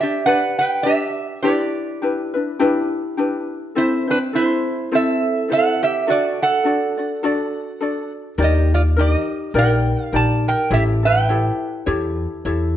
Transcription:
0.01 D4 G4 D5 E5
0.26 D4 G4 B4 D5 F#5
0.59 B4 G5
0.83 D4 G4 B4 D5 E5
1.42 D4 E4 G4 B4 D5
2.02 D4 E4 G4 B4
2.34 D4 E4 B4
2.59 D4 E4 G4 B4
3.17 D4 E4 G4 B4
3.75 C4 E4 A4 C5
4.08 C4 D4 E4 B4 C5
4.33 C4 E4 A4 C5
4.91 C4 E4 A4 C5 E5
5.48 C4 E4 A4 C5
5.53 F#5
5.83 G4 E5
6.07 D4 F#4 A4 D5
6.11 D5
6.42 A4 F#5
6.64 D4 F#4 A4 D5
6.97 D4 F#4 D5
7.23 D4 F#4 A4 D5
7.81 D4 F#4 A4 D5
8.38 D#2 D#4 G4 A#4 D5
8.42 G4 D#5
8.74 F4 D5
8.97 D#4 G4 A#4 D5
9.11 D#5
9.54 A#1 D#4 G4 A#4 D5
9.59 A#4 G5
10.04 F5
10.12 A#1 D#4 G4 A#4 D5 A5
10.48 A#4 G5
10.70 A1 E4 G4 A4 C#5 E5
11.03 E4 G4 A4 B4 G5
11.29 E4 G4 A4 C#5
11.86 E2 E4 G4 A4 C#5
12.45 E2 E4 G4 A4 C#5

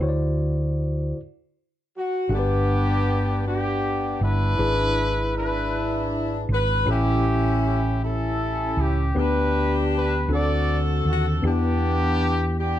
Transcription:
Already playing: A4
0.01 D2 D3 E4 F#4 C5 C#5
0.09 D5
1.97 F#4
2.29 G1 G2 D4 G4 A4 F#5
2.34 B3 D4 G4
2.39 B4
3.47 B3 D4 G4
4.21 G1 D4 E4 B4
4.57 G#1 G#2 D4 E4 G#4 B4
5.37 D4 E4 B4
6.49 G#1
6.53 B4
6.86 A1 A2 C#4 E4 G4 A4
6.90 C#4 G4
7.66 G4
8.03 C#4 E4 A4
8.77 C#2 G4
9.15 D2 D3 B3 D4 G4 B4
9.19 B4
9.96 B4
10.28 D2 D3 C4 D4 F#4 A4
10.33 F#4 A4 D5
11.05 D#2
11.10 F#4
11.42 E2 E3 B3 D4 E4 G4
11.47 B3 D4 G4
12.60 B3 D4 G4

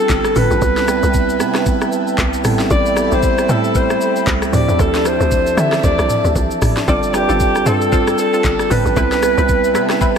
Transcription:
Already playing: G3 B3 C4 D4 F4 G4 A4 G5 A5
0.09 G1, kick, clap, shaker
0.24 cross-stick, shaker
0.36 G1 B4, mid tom, open hi-hat, shaker
0.51 A1, shaker
0.60 C2 G3 B3 C4 E4 B4 E5, kick, shaker
0.77 snare, shaker
0.87 G3 B3 C4 E4 D5, cross-stick, shaker
1.03 C2, shaker
1.14 kick, shaker
1.29 shaker
1.39 C3 G3 B3 C4 E4 B4, cross-stick, shaker
1.55 cross-stick, snare, shaker
1.66 kick, shaker
1.81 cross-stick, shaker
1.92 shaker
2.07 shaker
2.18 C2, kick, clap, shaker
2.33 shaker
2.43 A1 G3 B3 C4 E4 A4 E5 B5, cross-stick, mid tom, open hi-hat, shaker
2.59 snare, shaker
2.70 A1 D5, kick, shaker
2.86 shaker
2.95 G3 B3 C4 E4 G4, cross-stick, shaker
3.12 A1 C5, shaker
3.23 kick, shaker
3.38 cross-stick, shaker
3.47 A2 G3 A3 C4 E4 A4, shaker
3.64 shaker
3.75 C5, kick, shaker
3.90 cross-stick, shaker
4.01 shaker
4.16 shaker
4.27 C2, kick, clap, shaker
4.42 cross-stick, shaker
4.52 D2 F3 C4 D4 E4 G4 D5 E5 A5, mid tom, open hi-hat, shaker
4.68 E2, shaker
4.79 D2 A4, kick, shaker
4.95 snare, shaker
5.04 F3 C4 D4 E4 A4 C5, cross-stick, shaker
5.20 D2, shaker
5.31 kick, shaker
5.47 shaker
5.56 D3 E3 C4 D4 E4 A4 E5, cross-stick, shaker
5.63 F3
5.72 cross-stick, snare, shaker
5.84 D2 D5, kick, shaker
5.98 C2, cross-stick, shaker
6.10 mid tom, shaker
6.24 D2, shaker
6.35 C2, kick, shaker
6.51 shaker
6.62 A1, kick, cross-stick, mid tom, open hi-hat, shaker
6.77 snare, shaker
6.87 G1 G3 C4 D4 F4 A4 D5 G5, kick, shaker
7.03 shaker
7.13 G3 C4 D4 F4 G4 B4, cross-stick, shaker
7.29 G1 C4 F4 A4, shaker
7.40 kick, shaker
7.55 cross-stick, shaker
7.65 G2 G3 C4 D4 F4 A4, shaker
7.81 shaker
7.92 C4 F4 A4, kick, shaker
8.07 cross-stick, shaker
8.18 A4, shaker
8.33 C4 F4 A4, shaker
8.44 G1, kick, clap, shaker
8.59 cross-stick, shaker
8.70 G1 C4 F4 A4 B4, mid tom, open hi-hat, shaker
8.85 A1, shaker
8.95 C2 G3 B3 C4 E4 B4 E5, kick, shaker
9.12 snare, shaker
9.21 G3 B3 C4 E4 B4, cross-stick, shaker
9.38 C2 C4 E4 B4, shaker
9.49 kick, shaker
9.64 shaker
9.73 C3 G3 B3 C4 E4 B4, cross-stick, shaker
9.90 cross-stick, snare, shaker
10.01 C4 E4 B4, kick, shaker

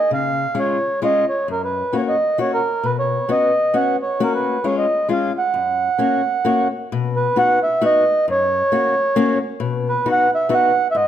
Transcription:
Already playing: D#5
0.11 C#3 F5
0.55 G#3 C#4 F4
0.59 C#5
1.02 G#3 C#4 F4 D#5
1.29 C#5
1.48 F#2 A#4
1.64 B4
1.93 A#3 C#4 F#4
1.97 C#5
2.08 D#5
2.38 A#3 C#4 F#4 C#5
2.54 A#4
2.83 B2 B4
2.99 C#5
3.29 B3 C#4 F#4 D#5
3.74 B3 C#4 F#4 F#5
4.02 C#5
4.20 A#3 C#4 F#4 A#4
4.35 B4
4.64 G#3 C#4 F4 C#5
4.78 D#5
5.09 G#3 C#4 F4
5.13 F5
5.38 F#5
5.54 F#2
5.98 A#3 C#4 F#4
6.45 A#3 C#4 F#4
6.92 B2
7.16 B4
7.36 B3 D#4 F#4 F#5
7.63 E5
7.81 B3 D#4 F#4 D#5
8.28 F#2 C#5
8.72 A#3 C#4 F#4
9.16 A#3 C#4 F#4
9.60 B2
9.88 B4
10.06 B3 D#4 F#4
10.12 F#5
10.35 E5
10.49 B3 D#4 F#4
10.54 F#5
10.91 G#2 E5
10.96 D#5

